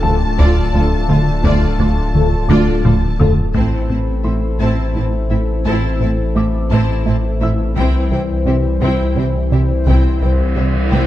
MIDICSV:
0, 0, Header, 1, 14, 480
1, 0, Start_track
1, 0, Key_signature, 0, "minor"
1, 0, Tempo, 701754
1, 991, Time_signature, 6, 3, 24, 8
1, 7570, End_track
2, 0, Start_track
2, 0, Title_t, "Grand piano"
2, 0, Program_c, 0, 0
2, 0, Control_c, 0, 64, 127
2, 0, Note_on_c, 0, 79, 73
2, 19, Note_on_c, 0, 81, 77
2, 962, Note_off_c, 0, 79, 0
2, 1438, Note_off_c, 0, 81, 0
2, 1700, Note_on_c, 0, 86, 33
2, 1707, Note_on_c, 0, 74, 31
2, 2398, Note_off_c, 0, 86, 0
2, 2402, Note_off_c, 0, 74, 0
2, 2445, Control_c, 0, 64, 0
2, 2550, Control_c, 0, 64, 127
2, 2903, Note_on_c, 0, 84, 37
2, 4320, Note_off_c, 0, 84, 0
2, 4354, Note_on_c, 0, 86, 46
2, 5084, Note_on_c, 0, 88, 49
2, 5323, Control_c, 0, 64, 0
2, 5447, Control_c, 0, 64, 127
2, 5765, Note_off_c, 0, 86, 0
2, 6490, Note_off_c, 0, 88, 0
2, 7570, End_track
3, 0, Start_track
3, 0, Title_t, "Violin section"
3, 0, Program_c, 1, 48
3, 0, Note_on_c, 1, 81, 68
3, 2266, Note_off_c, 1, 81, 0
3, 7570, End_track
4, 0, Start_track
4, 0, Title_t, "Violin section"
4, 0, Program_c, 2, 48
4, 270, Note_on_c, 2, 74, 73
4, 494, Note_off_c, 2, 74, 0
4, 508, Note_on_c, 2, 69, 57
4, 563, Note_off_c, 2, 69, 0
4, 744, Note_on_c, 2, 65, 52
4, 799, Note_off_c, 2, 65, 0
4, 985, Note_on_c, 2, 74, 64
4, 1211, Note_off_c, 2, 74, 0
4, 1227, Note_on_c, 2, 69, 51
4, 1282, Note_off_c, 2, 69, 0
4, 1708, Note_on_c, 2, 74, 67
4, 1933, Note_off_c, 2, 74, 0
4, 1951, Note_on_c, 2, 69, 50
4, 2006, Note_off_c, 2, 69, 0
4, 2190, Note_on_c, 2, 65, 55
4, 2245, Note_off_c, 2, 65, 0
4, 2419, Note_on_c, 2, 81, 40
4, 2423, Note_on_c, 2, 72, 42
4, 2648, Note_off_c, 2, 81, 0
4, 2650, Note_off_c, 2, 72, 0
4, 2664, Note_on_c, 2, 81, 30
4, 2665, Note_on_c, 2, 72, 34
4, 2719, Note_off_c, 2, 72, 0
4, 2719, Note_off_c, 2, 81, 0
4, 2897, Note_on_c, 2, 69, 34
4, 2899, Note_on_c, 2, 76, 35
4, 2952, Note_off_c, 2, 69, 0
4, 2953, Note_off_c, 2, 76, 0
4, 3139, Note_on_c, 2, 72, 45
4, 3143, Note_on_c, 2, 81, 42
4, 3368, Note_off_c, 2, 72, 0
4, 3370, Note_off_c, 2, 81, 0
4, 3386, Note_on_c, 2, 72, 34
4, 3387, Note_on_c, 2, 81, 35
4, 3441, Note_off_c, 2, 72, 0
4, 3442, Note_off_c, 2, 81, 0
4, 3629, Note_on_c, 2, 69, 37
4, 3630, Note_on_c, 2, 76, 38
4, 3683, Note_off_c, 2, 69, 0
4, 3684, Note_off_c, 2, 76, 0
4, 3869, Note_on_c, 2, 72, 59
4, 3870, Note_on_c, 2, 81, 51
4, 4093, Note_off_c, 2, 72, 0
4, 4094, Note_off_c, 2, 81, 0
4, 4108, Note_on_c, 2, 72, 43
4, 4115, Note_on_c, 2, 81, 44
4, 4163, Note_off_c, 2, 72, 0
4, 4170, Note_off_c, 2, 81, 0
4, 4353, Note_on_c, 2, 76, 38
4, 4354, Note_on_c, 2, 69, 42
4, 4408, Note_off_c, 2, 69, 0
4, 4408, Note_off_c, 2, 76, 0
4, 4587, Note_on_c, 2, 81, 56
4, 4588, Note_on_c, 2, 72, 59
4, 4812, Note_off_c, 2, 81, 0
4, 4813, Note_off_c, 2, 72, 0
4, 4832, Note_on_c, 2, 72, 44
4, 4832, Note_on_c, 2, 81, 45
4, 4887, Note_off_c, 2, 72, 0
4, 4887, Note_off_c, 2, 81, 0
4, 5069, Note_on_c, 2, 76, 53
4, 5071, Note_on_c, 2, 69, 46
4, 5123, Note_off_c, 2, 76, 0
4, 5125, Note_off_c, 2, 69, 0
4, 5309, Note_on_c, 2, 72, 55
4, 5310, Note_on_c, 2, 79, 60
4, 5533, Note_off_c, 2, 72, 0
4, 5534, Note_off_c, 2, 79, 0
4, 5553, Note_on_c, 2, 79, 49
4, 5555, Note_on_c, 2, 72, 42
4, 5607, Note_off_c, 2, 79, 0
4, 5609, Note_off_c, 2, 72, 0
4, 5791, Note_on_c, 2, 76, 44
4, 5795, Note_on_c, 2, 67, 40
4, 5846, Note_off_c, 2, 76, 0
4, 5850, Note_off_c, 2, 67, 0
4, 6035, Note_on_c, 2, 72, 46
4, 6036, Note_on_c, 2, 79, 48
4, 6256, Note_off_c, 2, 72, 0
4, 6257, Note_off_c, 2, 79, 0
4, 6274, Note_on_c, 2, 72, 44
4, 6277, Note_on_c, 2, 79, 36
4, 6328, Note_off_c, 2, 72, 0
4, 6332, Note_off_c, 2, 79, 0
4, 6513, Note_on_c, 2, 67, 41
4, 6515, Note_on_c, 2, 76, 35
4, 6568, Note_off_c, 2, 67, 0
4, 6570, Note_off_c, 2, 76, 0
4, 6747, Note_on_c, 2, 72, 46
4, 6748, Note_on_c, 2, 79, 47
4, 6972, Note_off_c, 2, 72, 0
4, 6973, Note_off_c, 2, 79, 0
4, 6987, Note_on_c, 2, 72, 30
4, 6988, Note_on_c, 2, 79, 34
4, 7042, Note_off_c, 2, 72, 0
4, 7042, Note_off_c, 2, 79, 0
4, 7219, Note_on_c, 2, 67, 36
4, 7221, Note_on_c, 2, 76, 35
4, 7274, Note_off_c, 2, 67, 0
4, 7276, Note_off_c, 2, 76, 0
4, 7458, Note_on_c, 2, 72, 51
4, 7463, Note_on_c, 2, 79, 47
4, 7570, Note_off_c, 2, 72, 0
4, 7570, Note_off_c, 2, 79, 0
4, 7570, End_track
5, 0, Start_track
5, 0, Title_t, "Viola section"
5, 0, Program_c, 3, 48
5, 274, Note_on_c, 3, 65, 71
5, 496, Note_off_c, 3, 65, 0
5, 514, Note_on_c, 3, 65, 59
5, 569, Note_off_c, 3, 65, 0
5, 751, Note_on_c, 3, 65, 55
5, 806, Note_off_c, 3, 65, 0
5, 994, Note_on_c, 3, 65, 69
5, 1216, Note_off_c, 3, 65, 0
5, 1236, Note_on_c, 3, 65, 43
5, 1290, Note_off_c, 3, 65, 0
5, 1710, Note_on_c, 3, 65, 74
5, 1934, Note_off_c, 3, 65, 0
5, 1947, Note_on_c, 3, 65, 52
5, 2002, Note_off_c, 3, 65, 0
5, 2188, Note_on_c, 3, 65, 50
5, 2242, Note_off_c, 3, 65, 0
5, 2424, Note_on_c, 3, 60, 46
5, 2427, Note_on_c, 3, 64, 42
5, 2651, Note_off_c, 3, 60, 0
5, 2652, Note_off_c, 3, 64, 0
5, 2666, Note_on_c, 3, 64, 30
5, 2668, Note_on_c, 3, 60, 30
5, 2721, Note_off_c, 3, 64, 0
5, 2723, Note_off_c, 3, 60, 0
5, 2907, Note_on_c, 3, 60, 31
5, 2908, Note_on_c, 3, 64, 33
5, 2962, Note_off_c, 3, 60, 0
5, 2962, Note_off_c, 3, 64, 0
5, 3151, Note_on_c, 3, 64, 49
5, 3152, Note_on_c, 3, 60, 48
5, 3374, Note_off_c, 3, 64, 0
5, 3375, Note_off_c, 3, 60, 0
5, 3390, Note_on_c, 3, 64, 36
5, 3392, Note_on_c, 3, 60, 35
5, 3445, Note_off_c, 3, 64, 0
5, 3446, Note_off_c, 3, 60, 0
5, 3631, Note_on_c, 3, 60, 35
5, 3631, Note_on_c, 3, 64, 36
5, 3685, Note_off_c, 3, 64, 0
5, 3686, Note_off_c, 3, 60, 0
5, 3874, Note_on_c, 3, 64, 62
5, 3875, Note_on_c, 3, 60, 54
5, 4096, Note_off_c, 3, 60, 0
5, 4096, Note_off_c, 3, 64, 0
5, 4118, Note_on_c, 3, 60, 35
5, 4120, Note_on_c, 3, 64, 37
5, 4173, Note_off_c, 3, 60, 0
5, 4175, Note_off_c, 3, 64, 0
5, 4347, Note_on_c, 3, 64, 46
5, 4348, Note_on_c, 3, 60, 47
5, 4402, Note_off_c, 3, 64, 0
5, 4403, Note_off_c, 3, 60, 0
5, 4593, Note_on_c, 3, 64, 68
5, 4595, Note_on_c, 3, 60, 60
5, 4815, Note_off_c, 3, 64, 0
5, 4817, Note_off_c, 3, 60, 0
5, 4831, Note_on_c, 3, 64, 45
5, 4833, Note_on_c, 3, 60, 49
5, 4886, Note_off_c, 3, 64, 0
5, 4887, Note_off_c, 3, 60, 0
5, 5071, Note_on_c, 3, 60, 44
5, 5071, Note_on_c, 3, 64, 44
5, 5126, Note_off_c, 3, 60, 0
5, 5126, Note_off_c, 3, 64, 0
5, 5311, Note_on_c, 3, 60, 59
5, 5312, Note_on_c, 3, 64, 59
5, 5534, Note_off_c, 3, 60, 0
5, 5535, Note_off_c, 3, 64, 0
5, 5552, Note_on_c, 3, 64, 39
5, 5553, Note_on_c, 3, 60, 39
5, 5606, Note_off_c, 3, 64, 0
5, 5607, Note_off_c, 3, 60, 0
5, 5789, Note_on_c, 3, 60, 45
5, 5790, Note_on_c, 3, 64, 39
5, 5843, Note_off_c, 3, 60, 0
5, 5844, Note_off_c, 3, 64, 0
5, 6034, Note_on_c, 3, 60, 56
5, 6035, Note_on_c, 3, 64, 52
5, 6256, Note_off_c, 3, 60, 0
5, 6256, Note_off_c, 3, 64, 0
5, 6274, Note_on_c, 3, 60, 40
5, 6274, Note_on_c, 3, 64, 41
5, 6329, Note_off_c, 3, 60, 0
5, 6329, Note_off_c, 3, 64, 0
5, 6518, Note_on_c, 3, 60, 38
5, 6518, Note_on_c, 3, 64, 33
5, 6572, Note_off_c, 3, 60, 0
5, 6573, Note_off_c, 3, 64, 0
5, 6757, Note_on_c, 3, 64, 49
5, 6759, Note_on_c, 3, 60, 46
5, 6978, Note_off_c, 3, 64, 0
5, 6979, Note_off_c, 3, 60, 0
5, 6998, Note_on_c, 3, 64, 28
5, 7001, Note_on_c, 3, 60, 32
5, 7053, Note_off_c, 3, 64, 0
5, 7055, Note_off_c, 3, 60, 0
5, 7236, Note_on_c, 3, 60, 32
5, 7236, Note_on_c, 3, 64, 32
5, 7291, Note_off_c, 3, 60, 0
5, 7291, Note_off_c, 3, 64, 0
5, 7475, Note_on_c, 3, 60, 41
5, 7478, Note_on_c, 3, 64, 46
5, 7570, Note_off_c, 3, 60, 0
5, 7570, Note_off_c, 3, 64, 0
5, 7570, End_track
6, 0, Start_track
6, 0, Title_t, "Analog synth pad"
6, 0, Program_c, 4, 89
6, 0, Note_on_c, 4, 57, 83
6, 0, Note_on_c, 4, 62, 80
6, 0, Note_on_c, 4, 65, 77
6, 0, Note_on_c, 4, 69, 72
6, 2402, Note_off_c, 4, 65, 0
6, 2413, Note_off_c, 4, 57, 0
6, 2413, Note_off_c, 4, 69, 0
6, 2419, Note_on_c, 4, 60, 48
6, 2420, Note_on_c, 4, 64, 49
6, 2421, Note_on_c, 4, 57, 49
6, 2421, Note_on_c, 4, 69, 54
6, 2426, Note_off_c, 4, 62, 0
6, 5278, Note_off_c, 4, 60, 0
6, 5278, Note_off_c, 4, 64, 0
6, 5279, Note_off_c, 4, 57, 0
6, 5279, Note_off_c, 4, 69, 0
6, 5302, Note_on_c, 4, 64, 64
6, 5304, Note_on_c, 4, 60, 53
6, 5308, Note_on_c, 4, 72, 61
6, 5309, Note_on_c, 4, 55, 55
6, 7570, Note_off_c, 4, 55, 0
6, 7570, Note_off_c, 4, 60, 0
6, 7570, Note_off_c, 4, 64, 0
6, 7570, Note_off_c, 4, 72, 0
6, 7570, End_track
7, 0, Start_track
7, 0, Title_t, "French horn section"
7, 0, Program_c, 5, 60
7, 32, Note_on_c, 5, 53, 62
7, 35, Note_on_c, 5, 69, 66
7, 116, Note_off_c, 5, 53, 0
7, 118, Note_off_c, 5, 69, 0
7, 744, Note_on_c, 5, 53, 57
7, 750, Note_on_c, 5, 69, 54
7, 830, Note_off_c, 5, 53, 0
7, 834, Note_off_c, 5, 69, 0
7, 1473, Note_on_c, 5, 53, 59
7, 1476, Note_on_c, 5, 69, 57
7, 1556, Note_off_c, 5, 53, 0
7, 1558, Note_off_c, 5, 69, 0
7, 2189, Note_on_c, 5, 53, 50
7, 2190, Note_on_c, 5, 69, 60
7, 2273, Note_off_c, 5, 53, 0
7, 2274, Note_off_c, 5, 69, 0
7, 2428, Note_on_c, 5, 72, 35
7, 2429, Note_on_c, 5, 52, 39
7, 5282, Note_off_c, 5, 72, 0
7, 5283, Note_off_c, 5, 52, 0
7, 5299, Note_on_c, 5, 52, 51
7, 5300, Note_on_c, 5, 72, 51
7, 7570, Note_off_c, 5, 52, 0
7, 7570, Note_off_c, 5, 72, 0
7, 7570, End_track
8, 0, Start_track
8, 0, Title_t, "Synth arpeggio sound"
8, 0, Program_c, 6, 84
8, 267, Note_on_c, 6, 50, 96
8, 412, Note_off_c, 6, 50, 0
8, 509, Note_on_c, 6, 53, 68
8, 653, Note_off_c, 6, 53, 0
8, 751, Note_on_c, 6, 57, 60
8, 895, Note_off_c, 6, 57, 0
8, 991, Note_on_c, 6, 50, 98
8, 1135, Note_off_c, 6, 50, 0
8, 1229, Note_on_c, 6, 62, 71
8, 1374, Note_off_c, 6, 62, 0
8, 1708, Note_on_c, 6, 50, 96
8, 1853, Note_off_c, 6, 50, 0
8, 1949, Note_on_c, 6, 53, 71
8, 2094, Note_off_c, 6, 53, 0
8, 2186, Note_on_c, 6, 57, 57
8, 2331, Note_off_c, 6, 57, 0
8, 2425, Note_on_c, 6, 57, 66
8, 2571, Note_off_c, 6, 57, 0
8, 2669, Note_on_c, 6, 60, 48
8, 2814, Note_off_c, 6, 60, 0
8, 2904, Note_on_c, 6, 64, 44
8, 3050, Note_off_c, 6, 64, 0
8, 3148, Note_on_c, 6, 57, 70
8, 3293, Note_off_c, 6, 57, 0
8, 3392, Note_on_c, 6, 64, 53
8, 3536, Note_off_c, 6, 64, 0
8, 3632, Note_on_c, 6, 64, 40
8, 3776, Note_off_c, 6, 64, 0
8, 3868, Note_on_c, 6, 57, 79
8, 4013, Note_off_c, 6, 57, 0
8, 4110, Note_on_c, 6, 60, 52
8, 4254, Note_off_c, 6, 60, 0
8, 4346, Note_on_c, 6, 64, 51
8, 4492, Note_off_c, 6, 64, 0
8, 4589, Note_on_c, 6, 57, 75
8, 4734, Note_off_c, 6, 57, 0
8, 4830, Note_on_c, 6, 64, 51
8, 4974, Note_off_c, 6, 64, 0
8, 5070, Note_on_c, 6, 64, 45
8, 5215, Note_off_c, 6, 64, 0
8, 5313, Note_on_c, 6, 48, 79
8, 5456, Note_off_c, 6, 48, 0
8, 5551, Note_on_c, 6, 52, 52
8, 5695, Note_off_c, 6, 52, 0
8, 5789, Note_on_c, 6, 55, 55
8, 5934, Note_off_c, 6, 55, 0
8, 6030, Note_on_c, 6, 48, 75
8, 6175, Note_off_c, 6, 48, 0
8, 6270, Note_on_c, 6, 55, 51
8, 6414, Note_off_c, 6, 55, 0
8, 6513, Note_on_c, 6, 55, 49
8, 6656, Note_off_c, 6, 55, 0
8, 6753, Note_on_c, 6, 48, 72
8, 6896, Note_off_c, 6, 48, 0
8, 6994, Note_on_c, 6, 52, 50
8, 7137, Note_off_c, 6, 52, 0
8, 7233, Note_on_c, 6, 55, 50
8, 7376, Note_off_c, 6, 55, 0
8, 7470, Note_on_c, 6, 48, 73
8, 7570, Note_off_c, 6, 48, 0
8, 7570, End_track
9, 0, Start_track
9, 0, Title_t, "Analog synth bass"
9, 0, Program_c, 7, 38
9, 25, Note_on_c, 7, 38, 69
9, 171, Note_off_c, 7, 38, 0
9, 263, Note_on_c, 7, 38, 101
9, 409, Note_off_c, 7, 38, 0
9, 507, Note_on_c, 7, 38, 58
9, 652, Note_off_c, 7, 38, 0
9, 745, Note_on_c, 7, 50, 63
9, 891, Note_off_c, 7, 50, 0
9, 987, Note_on_c, 7, 38, 86
9, 1133, Note_off_c, 7, 38, 0
9, 1226, Note_on_c, 7, 38, 62
9, 1371, Note_off_c, 7, 38, 0
9, 1465, Note_on_c, 7, 38, 69
9, 1611, Note_off_c, 7, 38, 0
9, 1698, Note_on_c, 7, 38, 88
9, 1846, Note_off_c, 7, 38, 0
9, 1944, Note_on_c, 7, 38, 60
9, 2090, Note_off_c, 7, 38, 0
9, 2185, Note_on_c, 7, 50, 65
9, 2331, Note_off_c, 7, 50, 0
9, 2424, Note_on_c, 7, 45, 68
9, 2570, Note_off_c, 7, 45, 0
9, 2664, Note_on_c, 7, 45, 47
9, 2810, Note_off_c, 7, 45, 0
9, 2902, Note_on_c, 7, 57, 46
9, 3049, Note_off_c, 7, 57, 0
9, 3144, Note_on_c, 7, 45, 67
9, 3291, Note_off_c, 7, 45, 0
9, 3386, Note_on_c, 7, 57, 44
9, 3532, Note_off_c, 7, 57, 0
9, 3632, Note_on_c, 7, 57, 48
9, 3776, Note_off_c, 7, 57, 0
9, 3871, Note_on_c, 7, 45, 68
9, 4015, Note_off_c, 7, 45, 0
9, 4104, Note_on_c, 7, 45, 50
9, 4250, Note_off_c, 7, 45, 0
9, 4349, Note_on_c, 7, 57, 57
9, 4494, Note_off_c, 7, 57, 0
9, 4584, Note_on_c, 7, 45, 75
9, 4730, Note_off_c, 7, 45, 0
9, 4828, Note_on_c, 7, 57, 47
9, 4973, Note_off_c, 7, 57, 0
9, 5067, Note_on_c, 7, 57, 54
9, 5212, Note_off_c, 7, 57, 0
9, 5303, Note_on_c, 7, 36, 72
9, 5449, Note_off_c, 7, 36, 0
9, 5540, Note_on_c, 7, 36, 46
9, 5687, Note_off_c, 7, 36, 0
9, 5781, Note_on_c, 7, 48, 58
9, 5928, Note_off_c, 7, 48, 0
9, 6014, Note_on_c, 7, 36, 72
9, 6163, Note_off_c, 7, 36, 0
9, 6263, Note_on_c, 7, 48, 49
9, 6409, Note_off_c, 7, 48, 0
9, 6509, Note_on_c, 7, 48, 45
9, 6654, Note_off_c, 7, 48, 0
9, 6743, Note_on_c, 7, 36, 69
9, 6889, Note_off_c, 7, 36, 0
9, 6984, Note_on_c, 7, 36, 52
9, 7130, Note_off_c, 7, 36, 0
9, 7224, Note_on_c, 7, 48, 50
9, 7370, Note_off_c, 7, 48, 0
9, 7469, Note_on_c, 7, 36, 68
9, 7570, Note_off_c, 7, 36, 0
9, 7570, End_track
10, 0, Start_track
10, 0, Title_t, "Cello section"
10, 0, Program_c, 8, 48
10, 266, Note_on_c, 8, 38, 82
10, 321, Note_off_c, 8, 38, 0
10, 505, Note_on_c, 8, 38, 57
10, 560, Note_off_c, 8, 38, 0
10, 748, Note_on_c, 8, 38, 51
10, 803, Note_off_c, 8, 38, 0
10, 986, Note_on_c, 8, 38, 69
10, 1041, Note_off_c, 8, 38, 0
10, 1229, Note_on_c, 8, 38, 49
10, 1284, Note_off_c, 8, 38, 0
10, 1710, Note_on_c, 8, 38, 73
10, 1765, Note_off_c, 8, 38, 0
10, 1950, Note_on_c, 8, 38, 53
10, 2005, Note_off_c, 8, 38, 0
10, 2189, Note_on_c, 8, 38, 46
10, 2244, Note_off_c, 8, 38, 0
10, 2428, Note_on_c, 8, 45, 42
10, 2483, Note_off_c, 8, 45, 0
10, 2670, Note_on_c, 8, 45, 29
10, 2725, Note_off_c, 8, 45, 0
10, 2912, Note_on_c, 8, 45, 30
10, 2966, Note_off_c, 8, 45, 0
10, 3150, Note_on_c, 8, 45, 47
10, 3205, Note_off_c, 8, 45, 0
10, 3390, Note_on_c, 8, 45, 36
10, 3445, Note_off_c, 8, 45, 0
10, 3624, Note_on_c, 8, 45, 35
10, 3679, Note_off_c, 8, 45, 0
10, 3870, Note_on_c, 8, 45, 59
10, 3925, Note_off_c, 8, 45, 0
10, 4113, Note_on_c, 8, 45, 43
10, 4167, Note_off_c, 8, 45, 0
10, 4349, Note_on_c, 8, 45, 46
10, 4404, Note_off_c, 8, 45, 0
10, 4593, Note_on_c, 8, 45, 60
10, 4648, Note_off_c, 8, 45, 0
10, 4827, Note_on_c, 8, 45, 44
10, 4882, Note_off_c, 8, 45, 0
10, 5074, Note_on_c, 8, 45, 43
10, 5128, Note_off_c, 8, 45, 0
10, 5313, Note_on_c, 8, 48, 65
10, 5368, Note_off_c, 8, 48, 0
10, 5551, Note_on_c, 8, 48, 42
10, 5605, Note_off_c, 8, 48, 0
10, 5785, Note_on_c, 8, 48, 42
10, 5840, Note_off_c, 8, 48, 0
10, 6029, Note_on_c, 8, 48, 57
10, 6084, Note_off_c, 8, 48, 0
10, 6263, Note_on_c, 8, 48, 37
10, 6318, Note_off_c, 8, 48, 0
10, 6505, Note_on_c, 8, 48, 37
10, 6559, Note_off_c, 8, 48, 0
10, 6746, Note_on_c, 8, 48, 44
10, 6801, Note_off_c, 8, 48, 0
10, 6990, Note_on_c, 8, 48, 32
10, 7045, Note_off_c, 8, 48, 0
10, 7232, Note_on_c, 8, 48, 33
10, 7287, Note_off_c, 8, 48, 0
10, 7475, Note_on_c, 8, 48, 51
10, 7529, Note_off_c, 8, 48, 0
10, 7570, End_track
11, 0, Start_track
11, 0, Title_t, "Double bass section"
11, 0, Program_c, 10, 48
11, 271, Note_on_c, 10, 38, 75
11, 326, Note_off_c, 10, 38, 0
11, 510, Note_on_c, 10, 38, 58
11, 564, Note_off_c, 10, 38, 0
11, 745, Note_on_c, 10, 38, 46
11, 800, Note_off_c, 10, 38, 0
11, 986, Note_on_c, 10, 38, 58
11, 1041, Note_off_c, 10, 38, 0
11, 1231, Note_on_c, 10, 38, 40
11, 1286, Note_off_c, 10, 38, 0
11, 1708, Note_on_c, 10, 38, 71
11, 1763, Note_off_c, 10, 38, 0
11, 1950, Note_on_c, 10, 38, 48
11, 2005, Note_off_c, 10, 38, 0
11, 2189, Note_on_c, 10, 38, 46
11, 2243, Note_off_c, 10, 38, 0
11, 2432, Note_on_c, 10, 33, 40
11, 2487, Note_off_c, 10, 33, 0
11, 2669, Note_on_c, 10, 33, 26
11, 2724, Note_off_c, 10, 33, 0
11, 2910, Note_on_c, 10, 33, 31
11, 2965, Note_off_c, 10, 33, 0
11, 3147, Note_on_c, 10, 33, 46
11, 3202, Note_off_c, 10, 33, 0
11, 3385, Note_on_c, 10, 33, 37
11, 3440, Note_off_c, 10, 33, 0
11, 3626, Note_on_c, 10, 33, 33
11, 3680, Note_off_c, 10, 33, 0
11, 3866, Note_on_c, 10, 33, 49
11, 3921, Note_off_c, 10, 33, 0
11, 4107, Note_on_c, 10, 33, 38
11, 4161, Note_off_c, 10, 33, 0
11, 4349, Note_on_c, 10, 33, 41
11, 4404, Note_off_c, 10, 33, 0
11, 4588, Note_on_c, 10, 33, 63
11, 4642, Note_off_c, 10, 33, 0
11, 4830, Note_on_c, 10, 33, 45
11, 4885, Note_off_c, 10, 33, 0
11, 5071, Note_on_c, 10, 33, 45
11, 5126, Note_off_c, 10, 33, 0
11, 5307, Note_on_c, 10, 36, 60
11, 5361, Note_off_c, 10, 36, 0
11, 5547, Note_on_c, 10, 36, 39
11, 5601, Note_off_c, 10, 36, 0
11, 5789, Note_on_c, 10, 36, 39
11, 5843, Note_off_c, 10, 36, 0
11, 6027, Note_on_c, 10, 36, 55
11, 6082, Note_off_c, 10, 36, 0
11, 6272, Note_on_c, 10, 36, 38
11, 6327, Note_off_c, 10, 36, 0
11, 6510, Note_on_c, 10, 36, 33
11, 6565, Note_off_c, 10, 36, 0
11, 6750, Note_on_c, 10, 36, 40
11, 6804, Note_off_c, 10, 36, 0
11, 6989, Note_on_c, 10, 36, 30
11, 7044, Note_off_c, 10, 36, 0
11, 7229, Note_on_c, 10, 36, 31
11, 7284, Note_off_c, 10, 36, 0
11, 7466, Note_on_c, 10, 36, 48
11, 7521, Note_off_c, 10, 36, 0
11, 7570, End_track
12, 0, Start_track
12, 0, Title_t, "Sub bass"
12, 0, Program_c, 11, 38
12, 0, Note_on_c, 11, 26, 80
12, 2431, Note_off_c, 11, 26, 0
12, 2435, Note_on_c, 11, 33, 47
12, 5311, Note_on_c, 11, 36, 56
12, 5321, Note_off_c, 11, 33, 0
12, 7570, Note_off_c, 11, 36, 0
12, 7570, End_track
13, 0, Start_track
13, 0, Title_t, "Reverse cymbal"
13, 0, Program_c, 12, 119
13, 6749, Note_on_c, 12, 60, 48
13, 7570, Note_off_c, 12, 60, 0
13, 7570, End_track
14, 0, Start_track
14, 0, Title_t, "Taiko and cinematic ensemble drums"
14, 29, Note_on_c, 9, 47, 55
14, 97, Note_off_c, 9, 47, 0
14, 271, Note_on_c, 9, 41, 76
14, 340, Note_off_c, 9, 41, 0
14, 750, Note_on_c, 9, 47, 50
14, 819, Note_off_c, 9, 47, 0
14, 990, Note_on_c, 9, 41, 93
14, 1058, Note_off_c, 9, 41, 0
14, 1469, Note_on_c, 9, 47, 59
14, 1537, Note_off_c, 9, 47, 0
14, 1715, Note_on_c, 9, 48, 71
14, 1784, Note_off_c, 9, 48, 0
14, 1951, Note_on_c, 9, 45, 82
14, 2019, Note_off_c, 9, 45, 0
14, 2194, Note_on_c, 9, 43, 84
14, 2263, Note_off_c, 9, 43, 0
14, 2431, Note_on_c, 9, 41, 40
14, 2500, Note_off_c, 9, 41, 0
14, 5307, Note_on_c, 9, 41, 51
14, 5376, Note_off_c, 9, 41, 0
14, 6747, Note_on_c, 9, 41, 70
14, 6815, Note_off_c, 9, 41, 0
14, 7471, Note_on_c, 9, 48, 55
14, 7539, Note_off_c, 9, 48, 0
14, 7570, End_track
0, 0, End_of_file